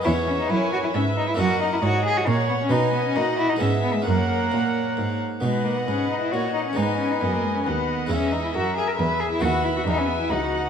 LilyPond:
<<
  \new Staff \with { instrumentName = "Violin section" } { \time 3/4 \key b \major \tempo 4 = 135 e''4 gis''4 e''4 | fis''2 fis''4 | gis''4 fis''4 e''4 | cis''2~ cis''8 r8 |
fis''2 fis''4 | gis''4 dis''4 dis''4~ | dis''4 e''2 | fis''4 gis''4 fis''4 | }
  \new Staff \with { instrumentName = "Violin section" } { \time 3/4 \key b \major cis''4 cis''4 e''4 | dis''4 cis''4 cis''4 | dis''2 e''4 | fis''2~ fis''8 r8 |
dis''2. | dis''4 gis''4 fis''4 | e''2 e''4~ | e''2 fis''4 | }
  \new Staff \with { instrumentName = "Viola section" } { \time 3/4 \key b \major cis''4 b'2 | ais'4 dis''4 cis''4 | b'4 fis'4 gis'4 | ais'2~ ais'8 r8 |
b'4 b'4 cis''4 | b'2 b'4 | gis'4 ais'4 gis'4 | b'4 b'4 fis'4 | }
  \new Staff \with { instrumentName = "Cello" } { \time 3/4 \key b \major e'8 cis'16 dis'16 e'8 fis'16 e'16 cis'8 dis'16 e'16 | fis'8 dis'16 e'16 fis'8 gis'16 fis'16 ais8 b16 cis'16 | dis'8 b16 cis'16 dis'8 e'16 dis'16 cis'8 b16 gis16 | ais2~ ais8 r8 |
gis8 ais16 b16 cis'8 dis'16 e'16 fis'8 dis'16 cis'16 | dis'8 cis'16 dis'16 b16 ais16 gis16 cis'16 b4 | cis'8 dis'16 e'16 fis'8 gis'16 ais'16 b'8 gis'16 e'16 | fis'8 e'16 fis'16 dis'16 cis'16 b16 e'16 dis'4 | }
  \new Staff \with { instrumentName = "Harpsichord" } { \time 3/4 \key b \major <b cis' e'>2. | <ais cis' e'>2. | <b dis'>2 <gis b e'>4 | cis'2 r4 |
<b dis'>2. | <gis b dis'>2. | <gis cis' e'>2. | <b fis'>2. | }
  \new Staff \with { instrumentName = "Harpsichord" } { \clef bass \time 3/4 \key b \major e,4 fis,4 gis,4 | fis,4 gis,4 ais,4 | b,4 ais,4 gis,4 | fis,4 ais,4 gis,4 |
b,4 gis,4 ais,4 | gis,4 fis,4 dis,4 | e,4 fis,4 e,4 | dis,4 e,4 cis,4 | }
  \new Staff \with { instrumentName = "Cello section" } { \clef bass \time 3/4 \key b \major e,4 fis,4 gis,4 | fis,4 gis,4 ais,4 | b,4 ais,4 gis,4 | fis,4 ais,4 gis,4 |
b,4 gis,4 ais,4 | gis,4 fis,4 dis,4 | e,4 fis,4 e,4 | dis,4 e,4 cis,4 | }
>>